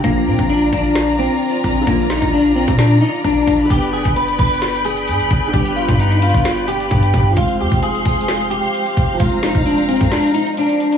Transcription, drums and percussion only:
0.04 kick loud
0.39 kick loud
0.73 kick medium
0.95 snare loud
1.64 kick medium
1.87 kick loud
2.10 snare loud
2.22 kick loud
2.68 kick loud
2.79 snare loud
3.25 kick medium
3.47 kick medium
3.70 kick loud
3.70 closed hi-hat medium
3.82 closed hi-hat medium
4.05 kick loud
4.05 closed hi-hat medium
4.16 closed hi-hat medium
4.28 closed hi-hat medium
4.39 kick medium
4.39 closed hi-hat medium
4.47 closed hi-hat medium
4.54 closed hi-hat medium
4.62 snare loud
4.62 closed hi-hat medium
4.74 closed hi-hat medium
4.85 closed hi-hat medium
4.97 closed hi-hat soft
5.08 closed hi-hat medium
5.20 closed hi-hat medium
5.31 kick medium
5.31 closed hi-hat medium
5.53 kick loud
5.53 closed hi-hat medium
5.65 closed hi-hat medium
5.88 kick loud
5.88 closed hi-hat medium
5.99 closed hi-hat medium
6.12 closed hi-hat medium
6.22 closed hi-hat medium
6.22 open hi-hat medium
6.30 closed hi-hat medium
6.34 kick loud
6.34 closed hi-hat medium
6.45 snare loud
6.45 closed hi-hat medium
6.58 closed hi-hat medium
6.68 closed hi-hat medium
6.80 closed hi-hat soft
6.91 kick medium
6.91 closed hi-hat medium
7.03 closed hi-hat medium
7.14 kick medium
7.14 closed hi-hat medium
7.37 kick loud
7.37 closed hi-hat medium
7.49 closed hi-hat medium
7.72 kick loud
7.72 closed hi-hat medium
7.83 closed hi-hat medium
7.95 closed hi-hat medium
8.05 kick medium
8.05 closed hi-hat medium
8.13 closed hi-hat medium
8.21 closed hi-hat medium
8.28 snare loud
8.28 closed hi-hat medium
8.41 closed hi-hat medium
8.51 closed hi-hat medium
8.64 closed hi-hat soft
8.74 closed hi-hat medium
8.86 closed hi-hat medium
8.97 kick medium
8.97 closed hi-hat medium
9.20 kick loud
9.20 closed hi-hat medium
9.32 closed hi-hat medium
9.43 snare loud
9.55 kick loud
9.55 closed hi-hat medium
9.66 closed hi-hat medium
9.78 closed hi-hat medium
9.89 closed hi-hat soft
9.89 open hi-hat medium
9.96 closed hi-hat medium
10.01 kick loud
10.01 closed hi-hat medium
10.12 snare loud
10.12 closed hi-hat medium
10.19 closed hi-hat medium
10.27 closed hi-hat medium
10.34 closed hi-hat medium
10.47 closed hi-hat soft
10.57 closed hi-hat medium
10.69 closed hi-hat medium
10.80 closed hi-hat medium
10.92 closed hi-hat soft

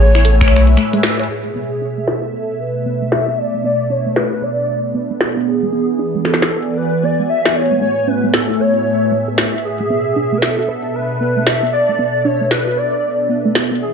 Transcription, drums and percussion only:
0.15 finger snap medium
0.15 closed hi-hat soft
0.25 closed hi-hat medium
0.41 finger snap medium
0.41 kick loud
0.41 closed hi-hat medium
0.48 finger snap medium
0.56 finger snap medium
0.67 closed hi-hat soft
0.77 finger snap medium
0.77 closed hi-hat medium
0.93 closed hi-hat medium
1.03 finger snap medium
1.03 snare loud
1.20 closed hi-hat soft
2.08 snare loud
3.12 snare loud
4.16 snare loud
5.21 snare loud
6.25 snare soft
6.34 snare medium
6.42 snare medium
7.46 snare loud
8.34 snare loud
9.38 snare loud
10.42 snare loud
11.47 snare loud
12.51 snare loud
13.55 snare loud

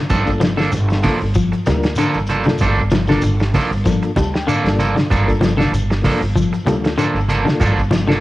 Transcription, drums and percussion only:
0.10 kick medium
0.10 closed hi-hat medium
0.10 low conga medium
0.10 shekere medium
0.26 kick medium
0.26 closed hi-hat soft
0.26 shekere soft
0.41 snare medium
0.41 closed hi-hat soft
0.41 high conga medium
0.41 shekere medium
0.58 snare medium
0.58 shekere soft
0.72 snare soft
0.72 closed hi-hat medium
0.72 shekere medium
0.90 snare medium
0.90 shekere soft
1.03 kick medium
1.03 open hi-hat medium
1.03 high conga medium
1.03 low conga medium
1.03 shekere medium
1.21 shekere soft
1.34 kick medium
1.34 closed hi-hat medium
1.34 shekere medium
1.52 closed hi-hat soft
1.52 shekere soft
1.66 snare soft
1.66 closed hi-hat medium
1.66 high conga medium
1.66 shekere medium
1.83 snare medium
1.83 closed hi-hat soft
1.83 shekere soft
1.96 closed hi-hat medium
1.96 shekere medium
2.00 snare soft
2.14 shekere soft
2.27 closed hi-hat medium
2.27 high conga medium
2.27 shekere medium
2.44 high conga medium
2.44 shekere soft
2.48 snare medium
2.58 kick medium
2.58 closed hi-hat medium
2.58 low conga medium
2.58 shekere medium
2.62 snare soft
2.75 kick medium
2.75 shekere soft
2.90 snare medium
2.90 closed hi-hat soft
2.90 high conga medium
2.90 shekere medium
3.07 snare medium
3.07 high conga medium
3.07 shekere soft
3.21 closed hi-hat medium
3.21 shekere medium
3.39 snare medium
3.39 shekere soft
3.54 kick medium
3.54 open hi-hat medium
3.54 high conga medium
3.54 low conga medium
3.54 shekere medium
3.72 shekere soft
3.86 kick medium
3.86 snare soft
3.86 closed hi-hat medium
3.86 shekere medium
4.03 closed hi-hat soft
4.03 shekere soft
4.16 kick medium
4.16 closed hi-hat soft
4.16 high conga medium
4.16 shekere medium
4.35 snare medium
4.35 shekere soft
4.49 closed hi-hat medium
4.49 shekere medium
4.66 snare medium
4.66 closed hi-hat soft
4.66 shekere soft
4.79 closed hi-hat soft
4.79 high conga medium
4.79 shekere medium
4.96 snare medium
4.96 closed hi-hat soft
4.96 high conga medium
4.96 shekere soft
5.10 kick medium
5.10 closed hi-hat medium
5.10 low conga medium
5.10 shekere medium
5.28 kick medium
5.28 closed hi-hat soft
5.28 shekere soft
5.41 snare medium
5.41 closed hi-hat soft
5.41 high conga medium
5.41 shekere medium
5.58 snare medium
5.58 high conga medium
5.58 shekere soft
5.74 closed hi-hat medium
5.74 shekere medium
5.91 snare medium
5.91 shekere soft
6.04 kick medium
6.04 open hi-hat medium
6.04 high conga medium
6.04 low conga medium
6.04 shekere medium
6.22 shekere soft
6.35 kick medium
6.35 closed hi-hat medium
6.35 high conga medium
6.35 shekere medium
6.53 closed hi-hat soft
6.53 shekere soft
6.67 closed hi-hat soft
6.67 high conga medium
6.67 shekere medium
6.84 snare medium
6.84 closed hi-hat soft
6.84 shekere soft
6.98 snare soft
6.98 closed hi-hat medium
6.98 shekere medium
7.15 shekere soft
7.28 closed hi-hat medium
7.28 high conga medium
7.28 shekere medium
7.45 snare medium
7.45 high conga medium
7.45 shekere soft
7.60 kick medium
7.60 closed hi-hat medium
7.60 low conga medium
7.60 shekere medium
7.78 kick medium
7.78 shekere soft
7.91 snare medium
7.91 closed hi-hat soft
7.91 high conga medium
7.91 shekere medium
8.08 snare medium
8.08 high conga medium
8.08 shekere soft

